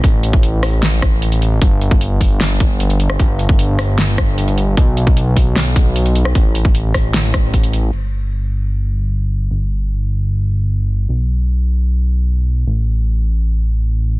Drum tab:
CC |----------------|----------------|----------------|----------------|
HH |x-x-x-o-x-x-xxx-|x-x-x-o-x-x-xxx-|x-x-x-o-x-x-xxx-|x-x-x-o-x-x-xxx-|
SD |------r-o-r-----|--------o------r|------r-o-r-----|--------o------r|
BD |o--o------o-----|o--o--o---o-----|o--o------o-----|o--o--o---o-----|

CC |----------------|x---------------|----------------|----------------|
HH |x-x-x-o-x-x-xxx-|----------------|----------------|----------------|
SD |------r-o-r-----|----------------|----------------|----------------|
BD |o--o--o---o-o---|----------------|----------------|----------------|

CC |----------------|
HH |----------------|
SD |----------------|
BD |----------------|